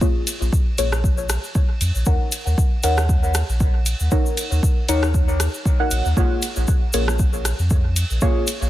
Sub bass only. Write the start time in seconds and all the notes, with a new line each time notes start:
0.41 A#1
0.78 A#1
1.81 F2
1.95 A#1
2.06 D#2
2.46 D#2
2.83 D#2
3.49 A#1
4.00 D#2
4.52 D#2
4.89 D#2
5.91 A#1
6.05 D#2
6.17 A#1
6.57 A#1
6.94 A#1
7.59 F2
8.11 A#1
8.62 A#1